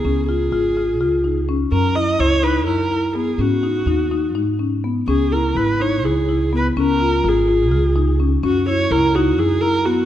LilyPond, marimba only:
\new Staff \with { instrumentName = "Marimba" } { \time 7/8 \key cis \dorian \tempo 4 = 126 cis'8 eis'8 eis'8 eis'8 eis'8 dis'8 cis'8 | cis'8 e'8 e'8 dis'8 e'8 e'8 b8 | cis'8 dis'8 dis'8 dis'8 dis'8 cis'8 b8 | cis'8 e'8 e'8 dis'8 e'8 e'8 b8 |
cis'8 eis'8 eis'8 eis'8 eis'8 dis'8 cis'8 | cis'8 e'8 e'8 dis'8 e'8 e'8 b8 | }